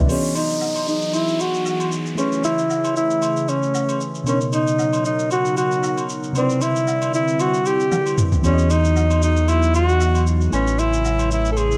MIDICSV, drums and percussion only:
0, 0, Header, 1, 2, 480
1, 0, Start_track
1, 0, Key_signature, 4, "major"
1, 0, Tempo, 521739
1, 85, Time_signature, 4, 2, 24, 8
1, 10834, End_track
2, 0, Start_track
2, 0, Title_t, "Drums"
2, 85, Note_on_c, 9, 67, 66
2, 85, Note_on_c, 9, 82, 72
2, 177, Note_off_c, 9, 67, 0
2, 177, Note_off_c, 9, 82, 0
2, 217, Note_on_c, 9, 82, 58
2, 309, Note_off_c, 9, 82, 0
2, 323, Note_on_c, 9, 82, 98
2, 325, Note_on_c, 9, 67, 75
2, 415, Note_off_c, 9, 82, 0
2, 417, Note_off_c, 9, 67, 0
2, 458, Note_on_c, 9, 82, 58
2, 550, Note_off_c, 9, 82, 0
2, 564, Note_on_c, 9, 77, 67
2, 566, Note_on_c, 9, 82, 70
2, 656, Note_off_c, 9, 77, 0
2, 658, Note_off_c, 9, 82, 0
2, 696, Note_on_c, 9, 67, 76
2, 697, Note_on_c, 9, 82, 50
2, 788, Note_off_c, 9, 67, 0
2, 789, Note_off_c, 9, 82, 0
2, 806, Note_on_c, 9, 82, 87
2, 898, Note_off_c, 9, 82, 0
2, 937, Note_on_c, 9, 82, 51
2, 1029, Note_off_c, 9, 82, 0
2, 1043, Note_on_c, 9, 67, 76
2, 1045, Note_on_c, 9, 82, 72
2, 1135, Note_off_c, 9, 67, 0
2, 1137, Note_off_c, 9, 82, 0
2, 1177, Note_on_c, 9, 82, 57
2, 1269, Note_off_c, 9, 82, 0
2, 1284, Note_on_c, 9, 67, 69
2, 1285, Note_on_c, 9, 82, 95
2, 1376, Note_off_c, 9, 67, 0
2, 1377, Note_off_c, 9, 82, 0
2, 1418, Note_on_c, 9, 82, 46
2, 1510, Note_off_c, 9, 82, 0
2, 1524, Note_on_c, 9, 77, 74
2, 1526, Note_on_c, 9, 82, 76
2, 1616, Note_off_c, 9, 77, 0
2, 1618, Note_off_c, 9, 82, 0
2, 1656, Note_on_c, 9, 67, 71
2, 1659, Note_on_c, 9, 82, 56
2, 1748, Note_off_c, 9, 67, 0
2, 1751, Note_off_c, 9, 82, 0
2, 1765, Note_on_c, 9, 82, 83
2, 1857, Note_off_c, 9, 82, 0
2, 1896, Note_on_c, 9, 82, 45
2, 1988, Note_off_c, 9, 82, 0
2, 2004, Note_on_c, 9, 67, 65
2, 2005, Note_on_c, 9, 82, 70
2, 2096, Note_off_c, 9, 67, 0
2, 2097, Note_off_c, 9, 82, 0
2, 2137, Note_on_c, 9, 82, 55
2, 2229, Note_off_c, 9, 82, 0
2, 2243, Note_on_c, 9, 82, 98
2, 2245, Note_on_c, 9, 67, 77
2, 2335, Note_off_c, 9, 82, 0
2, 2337, Note_off_c, 9, 67, 0
2, 2377, Note_on_c, 9, 82, 61
2, 2469, Note_off_c, 9, 82, 0
2, 2485, Note_on_c, 9, 77, 68
2, 2485, Note_on_c, 9, 82, 68
2, 2577, Note_off_c, 9, 77, 0
2, 2577, Note_off_c, 9, 82, 0
2, 2616, Note_on_c, 9, 82, 52
2, 2617, Note_on_c, 9, 67, 79
2, 2708, Note_off_c, 9, 82, 0
2, 2709, Note_off_c, 9, 67, 0
2, 2725, Note_on_c, 9, 82, 91
2, 2817, Note_off_c, 9, 82, 0
2, 2856, Note_on_c, 9, 82, 53
2, 2948, Note_off_c, 9, 82, 0
2, 2964, Note_on_c, 9, 67, 76
2, 2964, Note_on_c, 9, 82, 73
2, 3056, Note_off_c, 9, 67, 0
2, 3056, Note_off_c, 9, 82, 0
2, 3096, Note_on_c, 9, 82, 54
2, 3188, Note_off_c, 9, 82, 0
2, 3204, Note_on_c, 9, 67, 68
2, 3204, Note_on_c, 9, 82, 94
2, 3296, Note_off_c, 9, 67, 0
2, 3296, Note_off_c, 9, 82, 0
2, 3337, Note_on_c, 9, 82, 45
2, 3429, Note_off_c, 9, 82, 0
2, 3445, Note_on_c, 9, 77, 76
2, 3446, Note_on_c, 9, 82, 79
2, 3537, Note_off_c, 9, 77, 0
2, 3538, Note_off_c, 9, 82, 0
2, 3577, Note_on_c, 9, 67, 71
2, 3578, Note_on_c, 9, 82, 57
2, 3669, Note_off_c, 9, 67, 0
2, 3670, Note_off_c, 9, 82, 0
2, 3685, Note_on_c, 9, 82, 86
2, 3777, Note_off_c, 9, 82, 0
2, 3816, Note_on_c, 9, 82, 44
2, 3908, Note_off_c, 9, 82, 0
2, 3925, Note_on_c, 9, 67, 68
2, 3925, Note_on_c, 9, 82, 72
2, 4017, Note_off_c, 9, 67, 0
2, 4017, Note_off_c, 9, 82, 0
2, 4057, Note_on_c, 9, 82, 56
2, 4149, Note_off_c, 9, 82, 0
2, 4164, Note_on_c, 9, 82, 94
2, 4166, Note_on_c, 9, 67, 78
2, 4256, Note_off_c, 9, 82, 0
2, 4258, Note_off_c, 9, 67, 0
2, 4298, Note_on_c, 9, 82, 62
2, 4390, Note_off_c, 9, 82, 0
2, 4405, Note_on_c, 9, 77, 66
2, 4406, Note_on_c, 9, 82, 70
2, 4497, Note_off_c, 9, 77, 0
2, 4498, Note_off_c, 9, 82, 0
2, 4536, Note_on_c, 9, 67, 76
2, 4537, Note_on_c, 9, 82, 52
2, 4628, Note_off_c, 9, 67, 0
2, 4629, Note_off_c, 9, 82, 0
2, 4645, Note_on_c, 9, 82, 94
2, 4737, Note_off_c, 9, 82, 0
2, 4776, Note_on_c, 9, 82, 54
2, 4868, Note_off_c, 9, 82, 0
2, 4883, Note_on_c, 9, 67, 73
2, 4884, Note_on_c, 9, 82, 69
2, 4975, Note_off_c, 9, 67, 0
2, 4976, Note_off_c, 9, 82, 0
2, 5016, Note_on_c, 9, 82, 55
2, 5108, Note_off_c, 9, 82, 0
2, 5124, Note_on_c, 9, 82, 94
2, 5125, Note_on_c, 9, 67, 72
2, 5216, Note_off_c, 9, 82, 0
2, 5217, Note_off_c, 9, 67, 0
2, 5257, Note_on_c, 9, 82, 47
2, 5349, Note_off_c, 9, 82, 0
2, 5365, Note_on_c, 9, 77, 75
2, 5366, Note_on_c, 9, 82, 77
2, 5457, Note_off_c, 9, 77, 0
2, 5458, Note_off_c, 9, 82, 0
2, 5497, Note_on_c, 9, 67, 70
2, 5498, Note_on_c, 9, 82, 55
2, 5589, Note_off_c, 9, 67, 0
2, 5590, Note_off_c, 9, 82, 0
2, 5605, Note_on_c, 9, 82, 84
2, 5697, Note_off_c, 9, 82, 0
2, 5735, Note_on_c, 9, 82, 45
2, 5827, Note_off_c, 9, 82, 0
2, 5844, Note_on_c, 9, 82, 75
2, 5845, Note_on_c, 9, 67, 68
2, 5936, Note_off_c, 9, 82, 0
2, 5937, Note_off_c, 9, 67, 0
2, 5977, Note_on_c, 9, 82, 57
2, 6069, Note_off_c, 9, 82, 0
2, 6083, Note_on_c, 9, 82, 98
2, 6085, Note_on_c, 9, 67, 78
2, 6175, Note_off_c, 9, 82, 0
2, 6177, Note_off_c, 9, 67, 0
2, 6217, Note_on_c, 9, 82, 60
2, 6309, Note_off_c, 9, 82, 0
2, 6325, Note_on_c, 9, 77, 68
2, 6325, Note_on_c, 9, 82, 69
2, 6417, Note_off_c, 9, 77, 0
2, 6417, Note_off_c, 9, 82, 0
2, 6456, Note_on_c, 9, 82, 51
2, 6457, Note_on_c, 9, 67, 76
2, 6548, Note_off_c, 9, 82, 0
2, 6549, Note_off_c, 9, 67, 0
2, 6566, Note_on_c, 9, 82, 93
2, 6658, Note_off_c, 9, 82, 0
2, 6696, Note_on_c, 9, 82, 50
2, 6788, Note_off_c, 9, 82, 0
2, 6803, Note_on_c, 9, 82, 71
2, 6804, Note_on_c, 9, 67, 78
2, 6895, Note_off_c, 9, 82, 0
2, 6896, Note_off_c, 9, 67, 0
2, 6936, Note_on_c, 9, 82, 56
2, 7028, Note_off_c, 9, 82, 0
2, 7044, Note_on_c, 9, 82, 89
2, 7045, Note_on_c, 9, 67, 71
2, 7136, Note_off_c, 9, 82, 0
2, 7137, Note_off_c, 9, 67, 0
2, 7177, Note_on_c, 9, 82, 47
2, 7269, Note_off_c, 9, 82, 0
2, 7284, Note_on_c, 9, 77, 72
2, 7285, Note_on_c, 9, 48, 53
2, 7286, Note_on_c, 9, 82, 78
2, 7376, Note_off_c, 9, 77, 0
2, 7377, Note_off_c, 9, 48, 0
2, 7378, Note_off_c, 9, 82, 0
2, 7417, Note_on_c, 9, 67, 72
2, 7419, Note_on_c, 9, 82, 56
2, 7509, Note_off_c, 9, 67, 0
2, 7511, Note_off_c, 9, 82, 0
2, 7525, Note_on_c, 9, 45, 78
2, 7525, Note_on_c, 9, 82, 91
2, 7617, Note_off_c, 9, 45, 0
2, 7617, Note_off_c, 9, 82, 0
2, 7656, Note_on_c, 9, 82, 45
2, 7657, Note_on_c, 9, 43, 82
2, 7748, Note_off_c, 9, 82, 0
2, 7749, Note_off_c, 9, 43, 0
2, 7765, Note_on_c, 9, 67, 69
2, 7765, Note_on_c, 9, 82, 73
2, 7857, Note_off_c, 9, 67, 0
2, 7857, Note_off_c, 9, 82, 0
2, 7897, Note_on_c, 9, 82, 58
2, 7989, Note_off_c, 9, 82, 0
2, 8004, Note_on_c, 9, 82, 98
2, 8006, Note_on_c, 9, 67, 77
2, 8096, Note_off_c, 9, 82, 0
2, 8098, Note_off_c, 9, 67, 0
2, 8137, Note_on_c, 9, 82, 59
2, 8229, Note_off_c, 9, 82, 0
2, 8245, Note_on_c, 9, 82, 67
2, 8246, Note_on_c, 9, 77, 66
2, 8337, Note_off_c, 9, 82, 0
2, 8338, Note_off_c, 9, 77, 0
2, 8377, Note_on_c, 9, 67, 77
2, 8377, Note_on_c, 9, 82, 50
2, 8469, Note_off_c, 9, 67, 0
2, 8469, Note_off_c, 9, 82, 0
2, 8485, Note_on_c, 9, 82, 93
2, 8577, Note_off_c, 9, 82, 0
2, 8616, Note_on_c, 9, 82, 51
2, 8708, Note_off_c, 9, 82, 0
2, 8723, Note_on_c, 9, 67, 77
2, 8724, Note_on_c, 9, 82, 73
2, 8815, Note_off_c, 9, 67, 0
2, 8816, Note_off_c, 9, 82, 0
2, 8856, Note_on_c, 9, 82, 54
2, 8948, Note_off_c, 9, 82, 0
2, 8964, Note_on_c, 9, 82, 94
2, 8965, Note_on_c, 9, 67, 67
2, 9056, Note_off_c, 9, 82, 0
2, 9057, Note_off_c, 9, 67, 0
2, 9098, Note_on_c, 9, 82, 46
2, 9190, Note_off_c, 9, 82, 0
2, 9205, Note_on_c, 9, 77, 74
2, 9206, Note_on_c, 9, 82, 78
2, 9297, Note_off_c, 9, 77, 0
2, 9298, Note_off_c, 9, 82, 0
2, 9338, Note_on_c, 9, 67, 68
2, 9339, Note_on_c, 9, 82, 54
2, 9430, Note_off_c, 9, 67, 0
2, 9431, Note_off_c, 9, 82, 0
2, 9446, Note_on_c, 9, 82, 85
2, 9538, Note_off_c, 9, 82, 0
2, 9577, Note_on_c, 9, 82, 43
2, 9669, Note_off_c, 9, 82, 0
2, 9685, Note_on_c, 9, 67, 68
2, 9685, Note_on_c, 9, 82, 71
2, 9777, Note_off_c, 9, 67, 0
2, 9777, Note_off_c, 9, 82, 0
2, 9818, Note_on_c, 9, 82, 57
2, 9910, Note_off_c, 9, 82, 0
2, 9924, Note_on_c, 9, 82, 99
2, 9926, Note_on_c, 9, 67, 77
2, 10016, Note_off_c, 9, 82, 0
2, 10018, Note_off_c, 9, 67, 0
2, 10058, Note_on_c, 9, 82, 59
2, 10150, Note_off_c, 9, 82, 0
2, 10165, Note_on_c, 9, 77, 65
2, 10165, Note_on_c, 9, 82, 71
2, 10257, Note_off_c, 9, 77, 0
2, 10257, Note_off_c, 9, 82, 0
2, 10296, Note_on_c, 9, 67, 78
2, 10296, Note_on_c, 9, 82, 54
2, 10388, Note_off_c, 9, 67, 0
2, 10388, Note_off_c, 9, 82, 0
2, 10405, Note_on_c, 9, 82, 95
2, 10497, Note_off_c, 9, 82, 0
2, 10536, Note_on_c, 9, 82, 54
2, 10628, Note_off_c, 9, 82, 0
2, 10643, Note_on_c, 9, 67, 76
2, 10644, Note_on_c, 9, 82, 69
2, 10735, Note_off_c, 9, 67, 0
2, 10736, Note_off_c, 9, 82, 0
2, 10776, Note_on_c, 9, 82, 57
2, 10834, Note_off_c, 9, 82, 0
2, 10834, End_track
0, 0, End_of_file